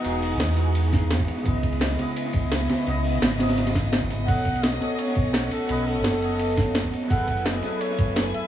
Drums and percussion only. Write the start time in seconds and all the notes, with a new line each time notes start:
0.04 closed hi-hat, ride
0.22 closed hi-hat, open hi-hat
0.39 snare, closed hi-hat, ride
0.49 ride
0.57 open hi-hat, ride
0.75 closed hi-hat, ride
0.93 kick, snare, closed hi-hat, ride
1.10 snare, closed hi-hat, ride
1.20 kick
1.28 open hi-hat, ride
1.37 snare
1.45 kick, closed hi-hat, ride
1.63 kick, closed hi-hat, ride
1.72 ride
1.81 snare, closed hi-hat, ride
1.90 snare
1.98 snare, open hi-hat, ride
2.16 closed hi-hat, ride
2.25 snare
2.33 kick, closed hi-hat, ride
2.51 snare, closed hi-hat, ride
2.61 ride
2.69 snare, open hi-hat, ride
2.78 snare
2.87 snare, closed hi-hat, ride
3.05 closed hi-hat, open hi-hat
3.22 snare, closed hi-hat, ride
3.32 ride
3.39 snare, open hi-hat, ride
3.49 snare, ride
3.57 snare, closed hi-hat, ride
3.66 snare, ride
3.75 kick, snare, closed hi-hat, ride
3.92 snare, closed hi-hat, ride
4.02 kick, snare
4.10 snare, open hi-hat, ride
4.28 kick, closed hi-hat, ride
4.45 kick, closed hi-hat, ride
4.55 ride
4.63 snare, closed hi-hat, ride
4.72 snare
4.81 snare, open hi-hat, ride
4.98 closed hi-hat, ride
5.07 snare
5.15 kick, closed hi-hat, ride
5.33 snare, closed hi-hat, ride
5.42 ride
5.51 open hi-hat, ride
5.69 closed hi-hat, ride
5.87 closed hi-hat, open hi-hat
6.04 snare, closed hi-hat, ride
6.14 ride
6.22 open hi-hat, ride
6.39 closed hi-hat, ride
6.57 kick, snare, closed hi-hat, ride
6.75 snare, closed hi-hat, ride
6.84 kick
6.93 open hi-hat, ride
7.02 snare
7.10 kick, closed hi-hat, ride
7.27 kick, closed hi-hat, ride
7.37 ride
7.46 snare, closed hi-hat, ride
7.54 snare
7.62 snare, open hi-hat, ride
7.81 closed hi-hat, ride
7.90 snare
7.98 kick, closed hi-hat, ride
8.16 snare, closed hi-hat, ride
8.26 ride
8.34 open hi-hat, ride